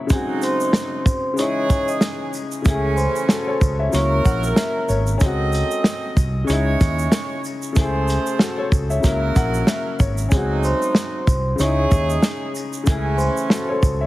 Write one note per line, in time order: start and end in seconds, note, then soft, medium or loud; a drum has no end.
0.00 0.07 C#3 medium
0.00 0.12 F#3 medium
0.00 0.13 A#3 medium
0.00 0.10 E4 medium
0.00 0.12 C#5 medium
0.00 0.12 E5 medium
0.00 0.12 F#5 medium
0.07 1.32 C#3 medium
0.07 1.04 F#3 medium
0.07 1.35 G#3 medium
0.07 1.04 A3 medium
0.07 1.04 D#4 medium
0.07 kick loud
0.07 shaker medium
0.11 1.37 C4 medium
0.11 0.40 G#4 loud
0.11 0.40 G#5 medium
0.11 closed hi-hat medium
0.15 1.38 F#4 medium
0.42 1.34 C5 medium
0.42 1.35 C6 medium
0.42 closed hi-hat medium
0.42 shaker soft
0.42 shaker medium
0.61 shaker medium
0.73 snare loud
0.73 closed hi-hat medium
0.73 shaker medium
1.06 kick loud
1.06 shaker medium
1.33 2.60 C#3 medium
1.33 2.62 G#3 medium
1.38 2.32 E3 medium
1.38 2.32 D#4 medium
1.38 2.64 D#4 medium
1.38 2.32 G#4 medium
1.38 1.85 C#5 loud
1.38 1.86 C#6 medium
1.38 closed hi-hat medium
1.38 shaker medium
1.42 2.65 E4 medium
1.70 kick loud
1.70 closed hi-hat medium
1.70 shaker medium
1.88 2.01 D#5 medium
1.88 2.01 D#6 medium
1.88 shaker medium
2.01 snare loud
2.01 closed hi-hat medium
2.01 shaker medium
2.33 shaker soft
2.33 shaker medium
2.52 shaker medium
2.62 3.06 C#2 loud
2.62 3.88 C#3 medium
2.62 3.60 E3 medium
2.62 3.90 A3 medium
2.62 3.60 A3 loud
2.62 3.60 C#4 medium
2.62 kick loud
2.62 shaker medium
2.66 3.92 E4 medium
2.66 2.96 G#4 loud
2.66 3.31 G#4 medium
2.66 2.96 G#5 medium
2.66 closed hi-hat medium
2.96 3.88 C5 medium
2.96 3.89 C6 medium
2.96 shaker soft
2.99 shaker medium
3.16 shaker medium
3.29 3.47 F#4 medium
3.29 3.46 A4 medium
3.29 snare loud
3.29 closed hi-hat medium
3.29 shaker medium
3.47 3.78 A4 medium
3.47 3.77 C#5 medium
3.61 3.87 C#2 loud
3.61 kick loud
3.61 shaker medium
3.79 4.10 C#5 medium
3.79 4.10 E5 medium
3.89 5.16 C#3 medium
3.89 5.18 F#3 medium
3.89 shaker medium
3.93 4.19 C#2 loud
3.93 4.88 F#3 medium
3.93 5.19 A#3 medium
3.93 4.88 E4 medium
3.93 4.88 A#4 loud
3.93 4.40 C#5 loud
3.93 4.41 C#6 medium
3.93 closed hi-hat medium
3.98 5.21 E4 medium
4.25 4.51 A#1 medium
4.25 4.55 F#5 medium
4.25 kick loud
4.25 shaker medium
4.43 5.17 A#4 medium
4.43 5.18 A#5 medium
4.43 shaker soft
4.56 4.87 E5 medium
4.56 snare loud
4.56 closed hi-hat medium
4.56 shaker medium
4.89 5.15 G#1 medium
4.89 5.19 C#5 medium
4.89 shaker medium
4.90 shaker medium
5.07 shaker medium
5.18 5.61 C#2 loud
5.18 6.46 G#3 medium
5.18 6.15 C4 medium
5.18 6.44 C#4 medium
5.18 6.15 A4 medium
5.18 6.15 D#5 medium
5.18 kick loud
5.18 shaker medium
5.22 6.47 C4 medium
5.22 6.49 F#4 medium
5.22 closed hi-hat medium
5.53 closed hi-hat medium
5.53 shaker soft
5.55 shaker medium
5.71 shaker medium
5.84 snare loud
5.84 closed hi-hat medium
5.84 shaker medium
6.17 6.43 C2 medium
6.17 kick medium
6.17 shaker medium
6.44 7.71 C#3 medium
6.44 7.73 G#3 medium
6.44 7.42 G#3 medium
6.44 7.42 E4 medium
6.44 7.42 C#5 medium
6.44 shaker medium
6.49 6.75 C#2 loud
6.49 7.74 D#4 medium
6.49 7.76 E4 medium
6.49 closed hi-hat medium
6.81 7.07 D#2 loud
6.81 kick loud
6.81 closed hi-hat medium
6.81 shaker medium
6.99 shaker medium
7.12 snare loud
7.12 closed hi-hat medium
7.12 shaker medium
7.44 shaker medium
7.46 shaker medium
7.62 shaker medium
7.72 8.17 C#2 loud
7.72 8.99 C#3 medium
7.72 9.01 A3 medium
7.72 kick loud
7.72 shaker medium
7.77 8.70 A3 medium
7.77 9.02 E4 medium
7.77 8.70 G#4 medium
7.77 8.41 G#4 medium
7.77 8.70 C5 medium
7.77 closed hi-hat medium
8.08 closed hi-hat medium
8.08 shaker soft
8.10 shaker medium
8.27 shaker medium
8.39 8.57 F#4 medium
8.39 8.57 A4 medium
8.39 snare loud
8.39 closed hi-hat medium
8.39 shaker medium
8.58 8.89 A4 medium
8.58 8.88 C#5 medium
8.72 8.98 C#2 loud
8.72 kick medium
8.72 shaker medium
8.90 9.21 C#5 medium
8.90 9.20 E5 medium
8.90 shaker medium
9.00 9.30 C#2 loud
9.00 10.27 C#3 medium
9.00 10.28 F#3 medium
9.00 9.98 F#3 medium
9.00 9.98 E4 medium
9.00 9.98 A#4 medium
9.00 kick loud
9.00 shaker medium
9.05 10.30 A#3 medium
9.05 10.31 E4 medium
9.05 closed hi-hat medium
9.36 9.62 A#1 medium
9.36 9.66 F#5 medium
9.36 kick loud
9.36 closed hi-hat medium
9.36 shaker medium
9.54 shaker medium
9.67 9.98 E5 medium
9.67 snare loud
9.67 closed hi-hat medium
9.67 shaker medium
9.99 10.26 G#1 medium
9.99 10.29 C#5 medium
9.99 kick loud
9.99 shaker soft
9.99 shaker medium
10.18 shaker medium
10.29 10.72 C#2 loud
10.29 11.26 F#3 medium
10.29 11.57 G#3 medium
10.29 11.26 A3 medium
10.29 11.55 C#4 medium
10.29 11.26 D#4 medium
10.29 10.61 G#4 loud
10.29 kick loud
10.29 closed hi-hat medium
10.29 shaker medium
10.33 11.58 C4 medium
10.33 11.59 F#4 medium
10.33 10.61 G#5 medium
10.63 11.56 C5 medium
10.63 11.56 C6 medium
10.63 shaker soft
10.63 shaker medium
10.82 shaker medium
10.95 snare loud
10.95 closed hi-hat medium
10.95 shaker medium
11.27 11.53 C2 medium
11.27 kick loud
11.27 shaker soft
11.27 shaker medium
11.55 11.85 C#2 loud
11.55 12.82 C#3 medium
11.55 12.84 G#3 medium
11.55 shaker medium
11.60 12.54 D#4 medium
11.60 12.85 D#4 medium
11.60 12.54 E4 medium
11.60 12.87 E4 medium
11.60 12.54 G#4 loud
11.60 12.06 C#5 loud
11.60 12.07 C#6 medium
11.60 closed hi-hat medium
11.91 12.17 D#2 loud
11.91 kick loud
11.91 shaker medium
12.09 12.22 D#5 medium
12.09 12.22 D#6 medium
12.09 shaker medium
12.22 snare loud
12.22 closed hi-hat medium
12.22 shaker medium
12.55 shaker soft
12.55 shaker medium
12.73 shaker medium
12.84 13.27 C#2 loud
12.84 14.07 C#3 medium
12.84 13.81 E3 medium
12.84 14.07 A3 medium
12.84 13.81 A3 loud
12.84 13.81 C#4 medium
12.84 kick loud
12.84 shaker medium
12.88 14.07 E4 medium
12.88 13.18 G#4 loud
12.88 13.52 G#4 medium
12.88 13.18 G#5 medium
12.88 closed hi-hat medium
13.17 14.07 C5 medium
13.17 14.07 C6 medium
13.17 shaker soft
13.20 shaker medium
13.37 shaker medium
13.50 13.68 F#4 medium
13.50 13.68 A4 medium
13.50 snare loud
13.50 closed hi-hat medium
13.50 shaker medium
13.69 13.99 A4 medium
13.69 13.99 C#5 medium
13.83 14.07 C#2 loud
13.83 kick loud
13.83 shaker soft
13.83 shaker medium
14.01 14.07 C#5 medium
14.01 14.07 E5 medium